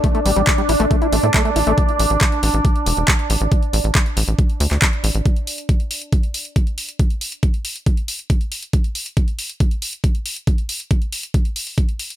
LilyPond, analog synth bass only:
\new Staff \with { instrumentName = "Analog synth bass" } { \clef bass \time 4/4 \key c \mixolydian \tempo 4 = 138 r8 a,,16 a,,16 r8 a,,16 a,,16 r8 a,,16 a,16 r8 a,,16 a,,16 | r8 a,,16 a,,16 r8 a,,16 a,,16 r8 e,,16 e,,16 r8 a,,16 a,,16 | r8 a,,16 a,,16 r8 a,,16 a,,16 r8 d,16 d,16 r8 a,,16 a,,16 | r1 |
r1 | r1 | r1 | }